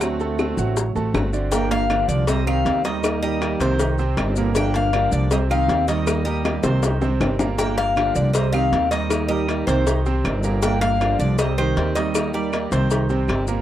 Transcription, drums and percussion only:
0.01 high bongo, claves, maracas
0.20 high bongo, maracas
0.39 high bongo, claves, maracas
0.58 high bongo, maracas
0.77 high bongo, maracas
0.96 high bongo, maracas
1.15 high bongo, low bongo, claves, maracas
1.33 maracas
1.52 cowbell, maracas
1.71 cowbell, maracas
1.90 cowbell, claves, maracas
2.09 maracas
2.27 cowbell, maracas
2.47 claves, maracas
2.66 cowbell, maracas
2.85 cowbell, maracas
3.04 cowbell, claves, maracas
3.23 maracas
3.42 cowbell, claves, maracas
3.60 cowbell, maracas
3.79 cowbell, maracas
3.98 maracas
4.17 cowbell, claves, maracas
4.36 maracas
4.55 cowbell, maracas
4.74 cowbell, maracas
4.93 cowbell, claves, maracas
5.12 maracas
5.31 cowbell, maracas
5.50 claves, maracas
5.69 cowbell, maracas
5.88 cowbell, maracas
6.07 cowbell, claves, maracas
6.26 maracas
6.45 cowbell, high bongo, claves, maracas
6.63 cowbell, high bongo, maracas
6.83 cowbell, high bongo, maracas
7.01 low bongo, maracas
7.21 cowbell, low bongo, claves, maracas
7.39 low bongo, maracas
7.58 cowbell, maracas
7.77 cowbell, maracas
7.96 cowbell, claves, maracas
8.15 maracas
8.34 cowbell, maracas
8.54 claves, maracas
8.73 cowbell, maracas
8.92 cowbell, maracas
9.10 cowbell, claves, maracas
9.30 maracas
9.48 cowbell, claves, maracas
9.68 cowbell, maracas
9.87 cowbell, maracas
10.06 maracas
10.25 cowbell, claves, maracas
10.43 maracas
10.62 cowbell, maracas
10.82 cowbell, maracas
11.01 cowbell, claves, maracas
11.20 maracas
11.38 cowbell, maracas
11.58 claves, maracas
11.77 cowbell, maracas
11.96 cowbell, maracas
12.15 cowbell, claves, maracas
12.34 maracas
12.53 cowbell, claves, maracas
12.72 cowbell, maracas
12.91 cowbell, maracas
13.09 maracas
13.28 cowbell, claves, maracas
13.47 maracas

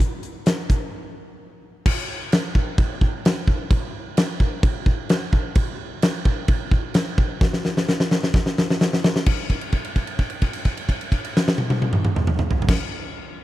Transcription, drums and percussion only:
0.00 kick
0.23 closed hi-hat
0.46 snare, closed hi-hat
0.70 kick, closed hi-hat
1.86 kick, crash
2.32 snare, crash
2.55 kick
2.78 kick, crash
3.01 kick
3.25 snare, crash
3.48 kick
3.70 kick, crash
4.17 snare, crash
4.40 kick
4.63 kick, crash
4.86 kick
5.09 snare, crash
5.33 kick
5.55 kick, crash
6.02 snare, crash
6.25 kick
6.48 kick, crash
6.71 kick
6.94 snare, crash
7.18 kick
7.41 kick, snare
7.53 snare
7.65 snare
7.77 snare
7.89 snare
8.00 snare
8.11 snare
8.23 snare
8.34 kick, snare
8.46 snare
8.58 snare
8.70 snare
8.81 snare
8.93 snare
9.04 snare
9.16 snare
9.26 kick, crash
9.50 kick, crash
9.61 crash
9.72 kick, crash
9.85 crash
9.96 kick, crash
10.07 crash
10.19 kick, crash
10.30 crash
10.42 kick, crash
10.53 crash
10.65 kick, crash
10.77 crash
10.89 kick, crash
11.01 crash
11.12 kick, crash
11.25 crash
11.37 snare
11.48 snare
11.58 high tom
11.70 high tom
11.82 high tom
11.93 mid tom
12.05 mid tom
12.16 mid tom
12.27 mid tom
12.39 mid tom
12.51 floor tom
12.62 floor tom
12.69 kick, snare, crash

